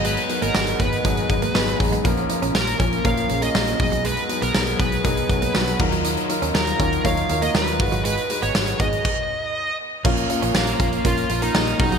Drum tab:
CC |----------------|----------------|--------------x-|----------------|
HH |xxxx-xxxxxxx-xox|xxxx-xxxxxxx-xox|xxxx-xxxxxxx-x-x|xxxx-xxxxxxx-xox|
TB |----x-------x---|----x-------x---|----x-------x---|----x-------x---|
SD |----o-------o---|----o-------o---|----o-------o---|----o-------o---|
BD |------o-o-o---o-|o-----o-o-----o-|------o-o-o---o-|------o-o-----o-|

CC |--------x-------|x---------------|
HH |xxxx-xxx--------|-xxx-xxxxxxx-xox|
TB |----x-----------|----x-------x---|
SD |----o-----------|----o-------o---|
BD |------o-o-------|o-----o-o-----o-|